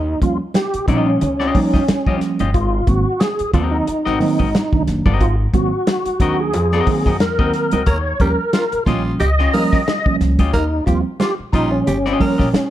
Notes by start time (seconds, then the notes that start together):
Already playing: D#2 D#4
0.22 D#2 F3 G3 A#3 C#4 F4, kick, closed hi-hat
0.54 A#3 C4 G4, snare, closed hi-hat, high conga
0.74 muted upright bass stroke, closed hi-hat
0.88 A#1 F3 G3 A#3 C#4 D#4 F4 G4 D#5, kick, closed hi-hat, muted conga
1.06 C#4
1.21 C#2, closed hi-hat, low conga
1.40 C#4 F4 G4 D#5, snare
1.55 F3 G3 A#3 D#4, kick, open hi-hat, muted conga
1.74 F2 C#4 F4 G4 D#5, kick, snare
1.88 muted upright bass stroke, snare, closed hi-hat, high conga
2.06 D#2 F3 G3 A#3 C#4 F4 G4 D#5, kick
2.21 snare, closed hi-hat
2.39 G1 C#4 F4 G4 D#5, closed hi-hat, high conga
2.54 G#1 F4, kick, closed hi-hat, muted conga
2.87 G#1 D#3 F#3 A#3 C4 F#4, kick, closed hi-hat, muted conga
3.20 A#3 C4 G#4, snare, closed hi-hat, high conga
3.39 muted upright bass stroke, closed hi-hat
3.54 D#2 D#3 F#3 A#3 C4 F4 F#4 A#4 D#5, kick, closed hi-hat, muted conga, low conga
3.71 D#4
3.87 muted upright bass stroke, closed hi-hat
4.05 G#1 C4 F#4 A#4 D#5, snare
4.20 D#3 F#3 A#3 C4, open hi-hat, muted conga
4.39 G#1 C4 F#4 A#4 D#5, kick
4.55 snare, closed hi-hat, high conga
4.72 C2 D#3 F#3 A#3 D4, kick
4.87 F#1, snare, closed hi-hat
5.06 G1 C4 F#4 A#4 D#5, kick, high conga
5.20 G#1 F4, kick, closed hi-hat, muted conga
5.54 G#1 D#3 F#3 A#3 C4 F#4, kick, closed hi-hat, muted conga
5.87 A#3 D4, snare, closed hi-hat, high conga
6.06 muted upright bass stroke, closed hi-hat
6.20 D#2 D#3 F#3 A#3 C4 D4 F#4 A#4 D#5, kick, closed hi-hat, muted conga
6.40 G#4
6.53 F2, closed hi-hat
6.72 C4 F#4 A#4 D#5, snare
6.87 D#3 F#3 A#3 C4, kick, open hi-hat, muted conga
7.05 F#2 C4 F#4 A#4 D#5, kick, snare
7.20 F2 A#4, snare, closed hi-hat, high conga
7.39 D#2 D#3 F#3 A#3 C4 F#4 A#4 D#5, kick
7.53 snare, closed hi-hat
7.71 C#2 C4 F#4 A#4 D#5, closed hi-hat, high conga
7.86 D#2 A#4 C#5, kick, closed hi-hat, muted conga
8.20 D#2 F3 G3 A#3 C#4 G4 A#4, kick, closed hi-hat
8.53 A#3 C#4 F4, snare, closed hi-hat, high conga
8.72 muted upright bass stroke, closed hi-hat
8.86 A#1 F3 G3 A#3 C#4 F4 G4 D#5, kick, closed hi-hat, muted conga, low conga
9.19 C#2 G4 D#5, closed hi-hat
9.39 C#4 F4 G4 D#5, snare
9.53 F3 G3 A#3 C#4 A#4, open hi-hat, muted conga
9.72 C#4 F4 G4 D#5, kick, snare
9.88 snare, closed hi-hat, high conga
10.06 C#2 F3 G3 A#3 C#4, kick
10.21 C#2, snare, closed hi-hat
10.39 D2 C#4 F4 G4 D#5, kick, closed hi-hat, high conga
10.53 D#2 D#4 A#4, kick, closed hi-hat, muted conga
10.86 D#2 F3 G3 A#3 C4 F4 G4, kick, closed hi-hat, muted conga
11.20 A#3 D#4 F4 G4, snare, closed hi-hat, high conga
11.39 muted upright bass stroke
11.53 A#1 F3 G3 A#3 C#4 D#4 F4 G4 D#5, kick, closed hi-hat, muted conga
11.71 C#4
11.87 G1 G4, closed hi-hat, low conga
12.05 C#4 F4 G4 D#5, snare
12.20 F3 G3 A#3 C#4 A#4, kick, open hi-hat, muted conga
12.38 A#1 C#4 F4 G4 D#5, kick, snare
12.53 muted upright bass stroke, snare, closed hi-hat, high conga